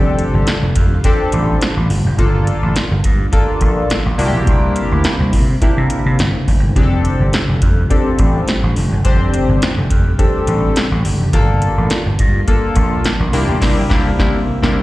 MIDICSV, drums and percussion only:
0, 0, Header, 1, 2, 480
1, 0, Start_track
1, 0, Key_signature, -1, "major"
1, 0, Tempo, 571429
1, 1839, Time_signature, 4, 2, 24, 8
1, 12454, End_track
2, 0, Start_track
2, 0, Title_t, "Drums"
2, 156, Note_on_c, 9, 42, 76
2, 240, Note_off_c, 9, 42, 0
2, 393, Note_on_c, 9, 42, 83
2, 399, Note_on_c, 9, 38, 119
2, 477, Note_off_c, 9, 42, 0
2, 483, Note_off_c, 9, 38, 0
2, 634, Note_on_c, 9, 42, 95
2, 638, Note_on_c, 9, 36, 94
2, 718, Note_off_c, 9, 42, 0
2, 722, Note_off_c, 9, 36, 0
2, 874, Note_on_c, 9, 42, 95
2, 877, Note_on_c, 9, 36, 116
2, 958, Note_off_c, 9, 42, 0
2, 961, Note_off_c, 9, 36, 0
2, 1112, Note_on_c, 9, 42, 87
2, 1196, Note_off_c, 9, 42, 0
2, 1356, Note_on_c, 9, 42, 82
2, 1365, Note_on_c, 9, 38, 110
2, 1440, Note_off_c, 9, 42, 0
2, 1449, Note_off_c, 9, 38, 0
2, 1597, Note_on_c, 9, 46, 68
2, 1681, Note_off_c, 9, 46, 0
2, 1836, Note_on_c, 9, 36, 127
2, 1837, Note_on_c, 9, 42, 78
2, 1920, Note_off_c, 9, 36, 0
2, 1921, Note_off_c, 9, 42, 0
2, 2076, Note_on_c, 9, 42, 77
2, 2160, Note_off_c, 9, 42, 0
2, 2316, Note_on_c, 9, 42, 88
2, 2322, Note_on_c, 9, 38, 123
2, 2400, Note_off_c, 9, 42, 0
2, 2406, Note_off_c, 9, 38, 0
2, 2554, Note_on_c, 9, 42, 96
2, 2557, Note_on_c, 9, 36, 109
2, 2638, Note_off_c, 9, 42, 0
2, 2641, Note_off_c, 9, 36, 0
2, 2795, Note_on_c, 9, 42, 92
2, 2796, Note_on_c, 9, 36, 111
2, 2879, Note_off_c, 9, 42, 0
2, 2880, Note_off_c, 9, 36, 0
2, 3031, Note_on_c, 9, 42, 83
2, 3033, Note_on_c, 9, 36, 102
2, 3115, Note_off_c, 9, 42, 0
2, 3117, Note_off_c, 9, 36, 0
2, 3277, Note_on_c, 9, 42, 87
2, 3285, Note_on_c, 9, 38, 109
2, 3361, Note_off_c, 9, 42, 0
2, 3369, Note_off_c, 9, 38, 0
2, 3518, Note_on_c, 9, 46, 73
2, 3602, Note_off_c, 9, 46, 0
2, 3756, Note_on_c, 9, 36, 124
2, 3756, Note_on_c, 9, 42, 74
2, 3840, Note_off_c, 9, 36, 0
2, 3840, Note_off_c, 9, 42, 0
2, 3997, Note_on_c, 9, 42, 87
2, 4081, Note_off_c, 9, 42, 0
2, 4234, Note_on_c, 9, 42, 82
2, 4240, Note_on_c, 9, 38, 123
2, 4318, Note_off_c, 9, 42, 0
2, 4324, Note_off_c, 9, 38, 0
2, 4476, Note_on_c, 9, 46, 94
2, 4478, Note_on_c, 9, 36, 103
2, 4560, Note_off_c, 9, 46, 0
2, 4562, Note_off_c, 9, 36, 0
2, 4718, Note_on_c, 9, 36, 113
2, 4718, Note_on_c, 9, 42, 89
2, 4802, Note_off_c, 9, 36, 0
2, 4802, Note_off_c, 9, 42, 0
2, 4956, Note_on_c, 9, 42, 95
2, 5040, Note_off_c, 9, 42, 0
2, 5199, Note_on_c, 9, 42, 90
2, 5208, Note_on_c, 9, 38, 115
2, 5283, Note_off_c, 9, 42, 0
2, 5292, Note_off_c, 9, 38, 0
2, 5440, Note_on_c, 9, 36, 97
2, 5443, Note_on_c, 9, 46, 72
2, 5524, Note_off_c, 9, 36, 0
2, 5527, Note_off_c, 9, 46, 0
2, 5679, Note_on_c, 9, 36, 118
2, 5681, Note_on_c, 9, 42, 81
2, 5763, Note_off_c, 9, 36, 0
2, 5765, Note_off_c, 9, 42, 0
2, 5920, Note_on_c, 9, 42, 81
2, 6004, Note_off_c, 9, 42, 0
2, 6158, Note_on_c, 9, 42, 85
2, 6164, Note_on_c, 9, 38, 121
2, 6242, Note_off_c, 9, 42, 0
2, 6248, Note_off_c, 9, 38, 0
2, 6399, Note_on_c, 9, 42, 85
2, 6400, Note_on_c, 9, 36, 105
2, 6483, Note_off_c, 9, 42, 0
2, 6484, Note_off_c, 9, 36, 0
2, 6640, Note_on_c, 9, 36, 99
2, 6641, Note_on_c, 9, 42, 86
2, 6724, Note_off_c, 9, 36, 0
2, 6725, Note_off_c, 9, 42, 0
2, 6876, Note_on_c, 9, 42, 92
2, 6877, Note_on_c, 9, 36, 112
2, 6960, Note_off_c, 9, 42, 0
2, 6961, Note_off_c, 9, 36, 0
2, 7120, Note_on_c, 9, 42, 89
2, 7128, Note_on_c, 9, 38, 104
2, 7204, Note_off_c, 9, 42, 0
2, 7212, Note_off_c, 9, 38, 0
2, 7362, Note_on_c, 9, 46, 67
2, 7446, Note_off_c, 9, 46, 0
2, 7600, Note_on_c, 9, 36, 127
2, 7600, Note_on_c, 9, 42, 91
2, 7684, Note_off_c, 9, 36, 0
2, 7684, Note_off_c, 9, 42, 0
2, 7842, Note_on_c, 9, 42, 86
2, 7926, Note_off_c, 9, 42, 0
2, 8082, Note_on_c, 9, 42, 87
2, 8088, Note_on_c, 9, 38, 125
2, 8166, Note_off_c, 9, 42, 0
2, 8172, Note_off_c, 9, 38, 0
2, 8320, Note_on_c, 9, 42, 96
2, 8321, Note_on_c, 9, 36, 99
2, 8404, Note_off_c, 9, 42, 0
2, 8405, Note_off_c, 9, 36, 0
2, 8560, Note_on_c, 9, 36, 114
2, 8560, Note_on_c, 9, 42, 91
2, 8644, Note_off_c, 9, 36, 0
2, 8644, Note_off_c, 9, 42, 0
2, 8798, Note_on_c, 9, 42, 89
2, 8882, Note_off_c, 9, 42, 0
2, 9038, Note_on_c, 9, 42, 89
2, 9047, Note_on_c, 9, 38, 117
2, 9122, Note_off_c, 9, 42, 0
2, 9131, Note_off_c, 9, 38, 0
2, 9281, Note_on_c, 9, 46, 71
2, 9365, Note_off_c, 9, 46, 0
2, 9519, Note_on_c, 9, 36, 115
2, 9520, Note_on_c, 9, 42, 90
2, 9603, Note_off_c, 9, 36, 0
2, 9604, Note_off_c, 9, 42, 0
2, 9759, Note_on_c, 9, 42, 81
2, 9843, Note_off_c, 9, 42, 0
2, 9997, Note_on_c, 9, 42, 91
2, 10003, Note_on_c, 9, 38, 116
2, 10081, Note_off_c, 9, 42, 0
2, 10087, Note_off_c, 9, 38, 0
2, 10239, Note_on_c, 9, 42, 92
2, 10240, Note_on_c, 9, 36, 102
2, 10323, Note_off_c, 9, 42, 0
2, 10324, Note_off_c, 9, 36, 0
2, 10480, Note_on_c, 9, 36, 100
2, 10480, Note_on_c, 9, 42, 88
2, 10564, Note_off_c, 9, 36, 0
2, 10564, Note_off_c, 9, 42, 0
2, 10714, Note_on_c, 9, 42, 89
2, 10717, Note_on_c, 9, 36, 103
2, 10798, Note_off_c, 9, 42, 0
2, 10801, Note_off_c, 9, 36, 0
2, 10958, Note_on_c, 9, 42, 81
2, 10966, Note_on_c, 9, 38, 109
2, 11042, Note_off_c, 9, 42, 0
2, 11050, Note_off_c, 9, 38, 0
2, 11200, Note_on_c, 9, 46, 75
2, 11284, Note_off_c, 9, 46, 0
2, 11438, Note_on_c, 9, 49, 85
2, 11439, Note_on_c, 9, 36, 112
2, 11444, Note_on_c, 9, 38, 113
2, 11522, Note_off_c, 9, 49, 0
2, 11523, Note_off_c, 9, 36, 0
2, 11528, Note_off_c, 9, 38, 0
2, 11680, Note_on_c, 9, 36, 122
2, 11686, Note_on_c, 9, 38, 116
2, 11764, Note_off_c, 9, 36, 0
2, 11770, Note_off_c, 9, 38, 0
2, 11920, Note_on_c, 9, 36, 126
2, 11925, Note_on_c, 9, 38, 113
2, 12004, Note_off_c, 9, 36, 0
2, 12009, Note_off_c, 9, 38, 0
2, 12287, Note_on_c, 9, 36, 122
2, 12293, Note_on_c, 9, 38, 121
2, 12371, Note_off_c, 9, 36, 0
2, 12377, Note_off_c, 9, 38, 0
2, 12454, End_track
0, 0, End_of_file